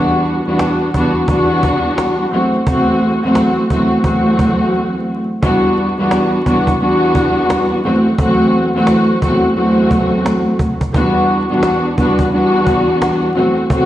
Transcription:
Already playing: string section E2 G3 B3 D4 F#4
0.11 cajon slap
0.26 cajon slap
0.45 string section E2 G3 B3 D4 F#4, cajon slap
0.59 cajon slap
0.81 cajon slap
0.93 string section E2 G3 B3 D4 F#4, cajon bass
1.16 cajon slap
1.28 string section E2 G3 B3 D4 F#4, cajon bass
1.50 cajon slap
1.63 cajon bass
1.84 cajon slap
1.98 cajon slap
2.18 cajon slap
2.31 string section E2 F#3 A3 C4 F#4, cajon slap
2.53 cajon slap
2.65 string section E2 F#3 A3 C4 F#4, cajon bass
2.88 cajon slap
3.02 cajon slap
3.22 string section E2 F#3 A3 C4 F#4, cajon slap
3.35 cajon slap
3.69 string section E2 F#3 A3 C4 F#4, cajon bass
3.92 cajon slap
4.03 string section E2 F#3 A3 C4 F#4, cajon bass
4.26 cajon slap
4.39 cajon bass
4.60 cajon slap
5.41 string section E2 G3 B3 D4 F#4, cajon bass
5.63 cajon slap
5.78 cajon slap
5.97 string section E2 G3 B3 D4 F#4, cajon slap
6.11 cajon slap
6.33 cajon slap
6.45 string section E2 G3 B3 D4 F#4, cajon bass
6.67 cajon bass
6.79 string section E2 G3 B3 D4 F#4, cajon slap
7.02 cajon slap
7.15 cajon bass
7.36 cajon slap
7.50 cajon slap
7.70 cajon slap
7.83 string section E2 F#3 A3 C4 F#4, cajon slap
8.05 cajon slap
8.17 string section E2 F#3 A3 C4 F#4, cajon bass
8.39 cajon slap
8.53 cajon slap
8.73 string section E2 F#3 A3 C4 F#4, cajon slap
8.87 cajon slap
9.09 cajon slap
9.21 string section E2 F#3 A3 C4 F#4, cajon bass
9.43 cajon slap
9.55 string section E2 F#3 A3 C4 F#4, cajon slap
9.78 cajon slap
9.91 cajon bass
10.11 cajon slap
10.26 cajon slap
10.46 cajon slap
10.59 cajon bass
10.81 cajon bass
10.93 string section E2 G3 B3 D4 F#4, cajon bass
11.15 cajon slap
11.29 cajon slap
11.49 string section E2 G3 B3 D4 F#4, cajon slap
11.63 cajon slap
11.85 cajon slap
11.97 string section E2 G3 B3 D4 F#4, cajon bass
12.19 cajon bass
12.31 string section E2 G3 B3 D4 F#4, cajon slap
12.54 cajon slap
12.67 cajon bass
12.87 cajon slap
13.02 cajon slap
13.22 cajon slap
13.34 string section E2 F#3 A3 C4 F#4, cajon slap
13.57 cajon slap
13.69 string section E2 F#3 A3 C4 F#4, cajon bass

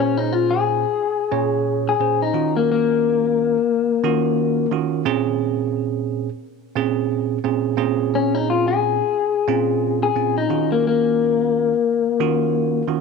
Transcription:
Already playing: tine electric piano A#2 C#4 G#4 C5
0.00 clean electric guitar C#4
0.17 clean electric guitar D#4
0.33 clean electric guitar F4
0.51 clean electric guitar G#4
1.32 tine electric piano A#2 C#4 G#4 C#5
1.89 clean electric guitar G#4
2.00 tine electric piano A#2 C#4 G#4 C5
2.22 clean electric guitar D#4
2.34 tine electric piano D#3 C#4 F4 F#4
2.57 clean electric guitar A#3
2.72 clean electric guitar A#3
4.04 tine electric piano D#3 C#4 F4 F#4
4.71 tine electric piano D#3 C#4 F4 F#4
5.05 tine electric piano A#2 C4 C#4 G#4
6.76 tine electric piano A#2 C4 C#4 G#4
7.44 tine electric piano A#2 C4 C#4 G#4
7.77 tine electric piano A#2 C4 C#4 G#4
8.15 clean electric guitar C#4
8.35 clean electric guitar D#4
8.50 clean electric guitar F4
8.68 clean electric guitar G#4
9.47 tine electric piano A#2 C4 C#4 F4
10.03 clean electric guitar G#4
10.16 tine electric piano A#2 C4 C#4 F4
10.38 clean electric guitar D#4
10.50 tine electric piano D#3 C#4 F4 F#4
10.72 clean electric guitar A#3
10.87 clean electric guitar A#3
12.20 tine electric piano D#3 C#4 F4 F#4
12.87 tine electric piano D#3 C#4 F4 F#4

